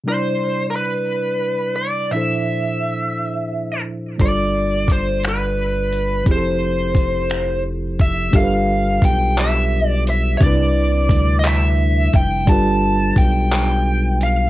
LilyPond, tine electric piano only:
\new Staff \with { instrumentName = "Tine electric piano" } { \time 6/8 \key c \major \tempo 4. = 58 <c g d' e' d''>2. | <bes, f d' e' a' c''>2. | <g d' f' a' d''>2. | <f c' e' g' aes' a'>2. |
<g d' f' g' a' bes' b'>2. | <c g d' e' b'>2. | <g d' f' g' a' b'>2. | }